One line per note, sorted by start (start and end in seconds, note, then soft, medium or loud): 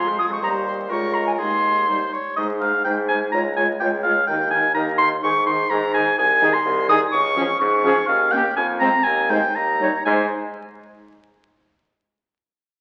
0.00 0.41 F2 medium
0.00 0.18 C6 loud
0.07 0.20 G#3 medium
0.07 0.20 G#4 medium
0.07 0.21 C5 medium
0.18 0.32 F3 medium
0.18 0.32 F4 medium
0.18 0.32 G#4 medium
0.18 0.24 D#6 loud
0.30 0.42 G#3 medium
0.30 0.41 G#4 medium
0.30 0.41 C5 medium
0.30 0.42 C#6 medium
0.42 0.87 D#2 medium
0.42 0.87 G3 medium
0.42 0.91 G4 medium
0.42 0.91 C5 medium
0.42 0.49 A#5 loud
0.66 0.72 C6 medium
0.90 1.41 C#2 medium
0.90 1.38 G#3 medium
0.90 1.41 F4 medium
0.90 1.40 A#4 medium
0.90 1.15 C#6 medium
1.14 1.26 A#5 medium
1.26 1.32 G#5 medium
1.38 2.13 D#2 medium
1.38 1.88 G#3 medium
1.38 1.74 D#4 medium
1.38 1.87 G#4 medium
1.38 2.11 C6 medium
1.88 1.99 G3 medium
1.88 2.00 D#4 medium
1.88 2.14 C5 medium
2.13 2.36 C#5 medium
2.36 2.80 G#2 medium
2.36 2.48 G#3 medium
2.36 2.48 D#4 medium
2.36 2.43 C5 medium
2.36 2.47 D#5 medium
2.61 2.72 G#3 medium
2.61 2.72 D#4 medium
2.61 2.68 C5 medium
2.61 2.84 F5 medium
2.84 3.28 G#2 medium
2.84 2.96 G#3 medium
2.84 2.96 D#4 medium
2.84 2.92 C5 medium
2.84 2.95 G5 medium
3.08 3.20 G#3 medium
3.08 3.20 D#4 medium
3.08 3.16 C5 medium
3.08 3.19 G#5 loud
3.32 3.76 C#2 medium
3.32 3.44 G#3 medium
3.32 3.44 F4 medium
3.32 3.40 C#5 medium
3.32 3.43 A#5 loud
3.56 3.67 G#3 medium
3.56 3.67 F4 medium
3.56 3.63 C#5 medium
3.56 3.67 G#5 medium
3.80 4.23 C#2 medium
3.80 3.92 G#3 medium
3.80 3.92 F4 medium
3.80 3.87 C#5 medium
3.80 3.91 G5 medium
4.03 4.15 G#3 medium
4.03 4.15 F4 medium
4.03 4.11 C#5 medium
4.03 4.26 F5 loud
4.27 4.70 D#2 medium
4.27 4.38 D#3 medium
4.27 4.39 D#4 medium
4.27 4.35 A#4 medium
4.27 4.50 G5 medium
4.51 4.62 D#3 medium
4.51 4.63 D#4 medium
4.51 4.58 A#4 medium
4.51 4.74 G#5 loud
4.75 5.18 D#2 medium
4.75 4.86 D#3 medium
4.75 4.86 D#4 medium
4.75 4.81 A#4 medium
4.75 4.86 A#5 medium
4.98 5.10 D#3 medium
4.98 5.09 D#4 medium
4.98 5.05 A#4 medium
4.98 5.09 C6 loud
5.23 5.65 G#2 medium
5.23 5.33 D#3 medium
5.23 5.34 D#4 medium
5.23 5.29 G#4 medium
5.23 5.45 C#6 loud
5.46 5.58 D#3 medium
5.46 5.57 D#4 medium
5.46 5.53 G#4 medium
5.46 5.71 C6 loud
5.70 6.12 G#2 medium
5.70 5.81 D#3 medium
5.70 5.81 D#4 medium
5.70 5.76 G#4 medium
5.70 5.93 A#5 loud
5.94 6.05 D#3 medium
5.94 6.05 D#4 medium
5.94 6.00 G#4 medium
5.94 6.18 G#5 loud
6.18 6.58 C2 medium
6.18 6.55 G#5 loud
6.42 6.50 D#3 loud
6.42 6.50 D#4 medium
6.42 6.53 G#4 loud
6.53 6.88 C6 loud
6.66 7.05 C2 loud
6.88 6.97 D#3 medium
6.88 6.97 D#4 medium
6.88 7.00 G#4 loud
6.88 7.00 D#6 loud
7.12 7.53 C#2 medium
7.12 7.59 C#6 loud
7.36 7.45 F3 loud
7.36 7.45 C#4 loud
7.36 7.48 G#4 medium
7.60 8.01 G#2 loud
7.60 8.09 C#6 loud
7.84 7.93 F3 loud
7.84 7.93 C#4 medium
7.84 7.96 G#4 loud
8.07 8.49 D#2 loud
8.07 8.33 F5 loud
8.32 8.41 A#3 medium
8.32 8.41 C#4 medium
8.32 8.44 G4 medium
8.32 8.56 G5 loud
8.56 8.94 F2 loud
8.56 8.67 G#5 loud
8.80 8.89 G#3 medium
8.80 8.89 C4 medium
8.80 8.92 C5 medium
8.80 9.05 A#5 loud
9.04 9.47 D#2 medium
9.04 9.32 G#5 loud
9.29 9.38 G#3 medium
9.29 9.38 D#4 medium
9.29 9.42 C5 medium
9.29 9.57 G5 loud
9.55 9.98 D#2 medium
9.55 10.04 A#5 loud
9.80 9.89 G3 medium
9.80 9.89 D#4 medium
9.80 9.93 C#5 medium
10.05 10.27 G#2 loud
10.05 10.27 G#3 medium
10.05 10.27 D#4 medium
10.05 10.34 C5 medium
10.05 10.26 G#5 loud